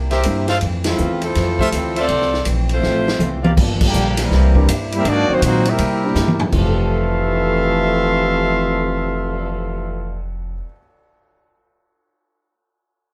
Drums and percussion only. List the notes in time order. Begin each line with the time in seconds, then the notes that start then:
0.11 snare, ride
0.23 hi-hat pedal, ride
0.48 snare, ride
0.61 ride
0.84 snare, ride
0.98 hi-hat pedal
1.21 ride
1.35 snare, ride
1.59 kick
1.72 hi-hat pedal, ride
1.96 ride
2.08 ride
2.21 snare
2.34 snare
2.45 hi-hat pedal, ride
2.69 ride
2.83 snare
3.08 snare
3.20 hi-hat pedal, high tom
3.44 high tom
3.57 kick, crash
3.81 kick, crash
3.93 hi-hat pedal
4.17 snare, ride
4.31 snare
4.55 kick
4.69 hi-hat pedal, ride
4.92 ride
5.05 ride
5.42 hi-hat pedal, ride
5.65 ride
5.78 ride
6.15 snare, hi-hat pedal
6.28 high tom
6.40 floor tom
6.52 kick, crash
6.76 cymbal swell